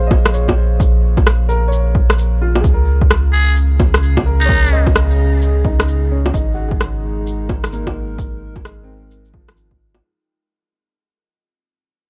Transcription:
0.00 2.63 A#1 medium
0.00 2.66 A#3 medium
0.00 3.51 A#3 medium
0.00 2.66 C#4 medium
0.00 2.42 F4 medium
0.00 3.27 G#4 medium
0.00 0.60 C5 medium
0.00 2.65 F5 medium
0.07 0.74 D#5 medium
0.11 kick loud
0.11 low bongo medium
0.26 cross-stick loud
0.26 shaker medium
0.33 1.06 C#5 medium
0.33 shaker medium
0.48 kick medium
0.48 low bongo medium
0.80 kick loud
0.80 shaker medium
1.17 kick loud
1.17 low bongo soft
1.27 cross-stick loud
1.27 shaker medium
1.49 2.21 A#4 medium
1.49 shaker soft
1.68 2.35 C#5 medium
1.73 shaker medium
1.95 kick loud
2.10 cross-stick loud
2.10 shaker medium
2.18 shaker medium
2.42 2.84 F4 medium
2.55 low bongo medium
2.60 6.32 C#2 medium
2.60 3.01 G#4 medium
2.64 6.34 C#3 medium
2.64 kick loud
2.64 shaker medium
2.74 3.12 A#4 medium
2.83 6.34 C#4 medium
3.02 kick loud
3.11 cross-stick loud
3.11 shaker medium
3.33 3.58 G#4 medium
3.57 shaker medium
3.71 10.03 G#4 medium
3.80 kick loud
3.80 low bongo medium
3.94 cross-stick loud
3.94 shaker medium
4.03 shaker medium
4.17 kick medium
4.17 low bongo medium
4.26 4.48 A#4 medium
4.40 4.86 D#4 loud
4.45 5.12 C#5 medium
4.45 kick loud
4.49 5.21 A#4 medium
4.49 shaker medium
4.72 5.44 D#5 medium
4.87 kick loud
4.87 low bongo soft
4.96 cross-stick loud
4.96 shaker medium
5.42 shaker medium
5.65 6.33 D#4 medium
5.65 kick loud
5.80 cross-stick loud
5.80 shaker medium
5.88 shaker medium
6.12 6.54 C#4 medium
6.26 low bongo medium
6.34 10.01 G#1 medium
6.34 10.03 G#3 medium
6.34 7.06 D#4 medium
6.34 kick loud
6.34 shaker medium
6.46 10.03 D#4 medium
6.54 7.21 F#4 medium
6.68 7.34 G#4 medium
6.68 kick loud
6.81 cross-stick loud
6.81 shaker medium
7.06 10.03 A#4 medium
7.27 shaker medium
7.49 kick loud
7.49 low bongo medium
7.64 cross-stick loud
7.64 shaker medium
7.73 8.45 A#3 medium
7.73 shaker medium
7.87 kick medium
7.87 low bongo medium
8.18 kick loud
8.18 shaker medium
8.56 kick loud
8.56 low bongo soft
8.65 9.37 G#3 medium
8.65 cross-stick loud
8.65 shaker medium
8.84 9.51 C4 medium
9.11 shaker medium
9.25 shaker soft
9.33 10.06 F3 medium
9.33 kick loud
9.48 cross-stick loud
9.48 shaker medium
9.57 shaker medium
9.71 kick medium
9.95 low bongo medium

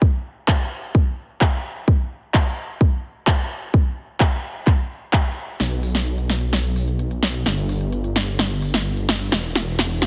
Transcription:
0.02 kick loud
0.48 kick loud
0.48 clap loud
0.95 kick loud
1.41 kick loud
1.41 clap loud
1.88 kick loud
2.34 kick loud
2.34 clap loud
2.81 kick loud
3.27 kick loud
3.27 clap loud
3.74 kick loud
4.20 kick loud
4.20 clap loud
4.67 kick loud
4.67 clap soft
5.13 kick loud
5.13 clap loud
5.60 7.44 B1 medium
5.60 snare soft
5.60 closed hi-hat medium
5.72 closed hi-hat soft
5.83 open hi-hat loud
5.95 snare soft
5.95 closed hi-hat soft
6.06 closed hi-hat medium
6.18 closed hi-hat soft
6.30 snare medium
6.30 open hi-hat loud
6.41 closed hi-hat soft
6.53 snare medium
6.53 closed hi-hat medium
6.64 closed hi-hat soft
6.76 open hi-hat loud
6.88 closed hi-hat soft
6.99 closed hi-hat medium
7.11 closed hi-hat soft
7.23 snare medium
7.23 open hi-hat loud
7.34 closed hi-hat soft
7.46 9.30 G1 medium
7.46 snare medium
7.46 closed hi-hat medium
7.58 closed hi-hat soft
7.69 open hi-hat loud
7.81 closed hi-hat soft
7.92 closed hi-hat medium
8.04 closed hi-hat soft
8.16 snare medium
8.16 open hi-hat loud
8.27 closed hi-hat soft
8.39 snare medium
8.39 closed hi-hat medium
8.51 closed hi-hat soft
8.62 open hi-hat loud
8.74 snare medium
8.74 closed hi-hat soft
8.86 closed hi-hat medium
8.97 closed hi-hat soft
9.09 snare medium
9.09 open hi-hat loud
9.20 closed hi-hat soft
9.32 10.07 E1 medium
9.32 snare medium
9.32 closed hi-hat medium
9.44 closed hi-hat soft
9.55 snare medium
9.55 open hi-hat loud
9.67 closed hi-hat soft
9.79 snare medium
9.79 closed hi-hat medium
9.90 closed hi-hat soft
10.02 snare medium
10.02 open hi-hat loud

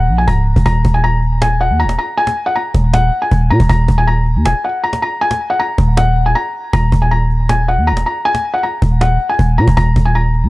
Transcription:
0.00 0.10 D#1 loud
0.00 0.16 F#5 medium
0.09 0.27 A#1 loud
0.09 cajon slap soft
0.15 0.27 G#5 medium
0.15 cajon slap soft
0.21 cajon slap soft
0.28 0.55 C#1 loud
0.28 0.63 A#5 medium
0.28 cajon bass medium
0.47 cajon slap soft
0.56 0.65 D#1 loud
0.56 cajon bass loud
0.66 0.84 D#1 loud
0.66 0.92 A#5 loud
0.66 cajon bass loud
0.85 1.72 D#1 loud
0.85 cajon bass loud
0.85 cajon slap medium
0.94 1.03 G#5 medium
1.04 1.39 A#5 medium
1.04 cajon slap soft
1.23 cajon slap soft
1.42 1.60 G#5 medium
1.42 cajon slap loud
1.60 1.79 F#5 medium
1.60 cajon slap soft
1.70 1.86 D#2 loud
1.80 1.97 A#5 medium
1.80 cajon slap soft
1.84 1.98 D#1 loud
1.89 cajon slap medium
1.99 2.16 A#5 medium
2.17 2.44 G#5 loud
2.17 cajon slap soft
2.27 cajon slap medium
2.46 2.55 F#5 medium
2.56 2.91 A#5 medium
2.56 cajon slap soft
2.74 3.11 D#1 loud
2.74 cajon bass medium
2.74 cajon slap medium
2.93 3.20 F#5 medium
2.93 cajon slap loud
3.12 cajon slap soft
3.22 3.49 G#5 medium
3.31 3.52 D#1 loud
3.31 cajon bass medium
3.50 3.60 A#2 loud
3.50 3.68 A#5 medium
3.50 cajon slap soft
3.60 3.69 D#1 loud
3.60 cajon bass loud
3.69 3.88 D#1 loud
3.69 3.96 A#5 loud
3.69 cajon bass loud
3.88 4.37 D#1 loud
3.88 cajon bass loud
3.88 cajon slap medium
3.98 4.07 G#5 medium
4.07 4.43 A#5 medium
4.07 cajon slap soft
4.27 cajon slap soft
4.36 4.47 D#2 loud
4.45 4.54 D#1 loud
4.45 4.63 G#5 medium
4.45 cajon slap loud
4.64 4.82 F#5 medium
4.64 cajon slap soft
4.84 5.01 A#5 medium
4.84 cajon slap soft
4.93 cajon slap medium
5.02 5.20 A#5 medium
5.02 cajon slap soft
5.21 5.48 G#5 loud
5.21 cajon slap soft
5.31 cajon slap loud
5.50 5.59 F#5 medium
5.59 5.95 A#5 loud
5.59 cajon slap soft
5.78 6.35 D#1 loud
5.78 cajon bass loud
5.78 cajon slap medium
5.85 cajon slap soft
5.91 cajon slap soft
5.97 6.24 F#5 medium
5.97 cajon slap loud
6.16 cajon slap soft
6.23 6.35 G#5 medium
6.23 cajon slap soft
6.29 cajon slap soft
6.35 6.71 A#5 medium
6.73 6.92 D#1 loud
6.73 7.00 A#5 loud
6.73 cajon bass loud
6.92 7.79 D#1 loud
6.92 cajon bass loud
6.92 cajon slap medium
7.02 7.11 G#5 medium
7.11 7.47 A#5 medium
7.11 cajon slap soft
7.30 cajon slap soft
7.49 7.67 G#5 medium
7.49 cajon slap loud
7.68 7.86 F#5 medium
7.68 cajon slap soft
7.78 7.93 D#2 loud
7.87 8.05 A#5 medium
7.87 cajon slap soft
7.92 8.05 D#1 loud
7.97 cajon slap medium
8.06 8.24 A#5 medium
8.25 8.52 G#5 loud
8.25 cajon slap soft
8.35 cajon slap medium
8.54 8.63 F#5 medium
8.63 8.99 A#5 medium
8.63 cajon slap soft
8.82 9.19 D#1 loud
8.82 cajon bass loud
8.82 cajon slap medium
9.01 9.28 F#5 medium
9.01 cajon slap loud
9.20 cajon slap soft
9.29 9.56 G#5 medium
9.39 9.60 D#1 loud
9.39 cajon bass medium
9.58 9.67 A#2 loud
9.58 9.75 A#5 medium
9.58 cajon slap soft
9.68 9.77 D#1 loud
9.68 cajon bass loud
9.77 9.95 D#1 loud
9.77 10.04 A#5 loud
9.77 cajon bass loud
9.96 10.45 D#1 loud
9.96 cajon bass loud
9.96 cajon slap medium
10.05 10.14 G#5 medium
10.15 10.49 A#5 medium
10.15 cajon slap soft
10.34 cajon slap soft
10.44 10.49 D#2 loud

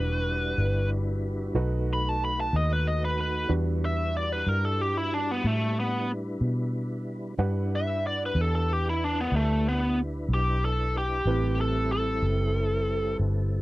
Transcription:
0.00 0.56 E1 medium
0.00 1.54 G3 medium
0.00 1.52 D4 soft
0.00 1.54 D4 medium
0.00 1.54 E4 medium
0.00 1.52 F#4 soft
0.00 1.52 G4 soft
0.00 0.89 B4 medium
0.00 1.52 B4 soft
0.00 1.54 B4 medium
0.58 1.53 G1 medium
1.55 2.49 B1 medium
1.55 3.48 A3 medium
1.55 3.46 D#4 medium
1.55 3.48 D#4 medium
1.55 3.46 F#4 soft
1.55 3.48 F#4 medium
1.55 3.46 A4 soft
1.55 3.46 B4 medium
1.55 3.48 B4 medium
1.93 2.09 B5 medium
2.09 2.22 A5 medium
2.25 2.38 B5 medium
2.41 2.54 A5 medium
2.53 3.47 D#2 medium
2.53 2.70 D#5 medium
2.73 2.87 B4 medium
2.87 3.02 D#5 medium
3.05 3.19 B4 medium
3.21 3.51 B4 medium
3.49 4.44 E2 medium
3.49 7.34 G3 medium
3.49 7.34 D4 soft
3.49 7.35 D4 soft
3.49 7.34 E4 medium
3.49 7.34 F#4 soft
3.49 7.35 G4 soft
3.49 7.34 B4 soft
3.85 4.15 E5 medium
4.17 4.32 D5 medium
4.32 4.49 B4 medium
4.47 5.41 G2 medium
4.47 4.64 A#4 medium
4.65 4.81 A4 medium
4.81 4.97 G4 medium
4.97 5.12 E4 medium
5.14 5.31 D4 medium
5.31 5.47 B3 medium
5.44 6.39 A2 medium
5.44 5.77 A3 medium
5.80 6.10 B3 medium
6.41 7.36 B2 medium
7.38 8.33 G2 medium
7.38 11.22 D4 medium
7.38 11.22 D4 soft
7.38 11.22 E4 medium
7.38 11.22 G4 soft
7.38 11.22 B4 medium
7.38 11.23 B4 medium
7.38 11.22 F#5 soft
7.76 8.05 E5 medium
8.07 8.21 D5 medium
8.26 8.41 B4 medium
8.35 9.29 E2 medium
8.41 8.54 A4 medium
8.55 8.73 A4 medium
8.73 8.86 G4 medium
8.90 9.04 E4 medium
9.04 9.18 D4 medium
9.21 9.34 B3 medium
9.32 10.26 D2 medium
9.36 9.66 A3 medium
9.69 9.98 B3 medium
10.29 11.23 B1 medium
10.34 10.63 G4 medium
10.65 10.95 A4 medium
10.98 11.59 G4 medium
11.25 12.20 A1 medium
11.25 13.62 G3 medium
11.25 13.62 C4 medium
11.25 13.62 C4 soft
11.25 13.62 E4 medium
11.25 13.62 E4 soft
11.25 13.62 G4 soft
11.25 13.62 A4 medium
11.25 13.62 B4 soft
11.61 11.91 A4 medium
11.92 13.17 A4 medium
12.22 13.16 F#1 medium
13.19 13.62 G1 medium

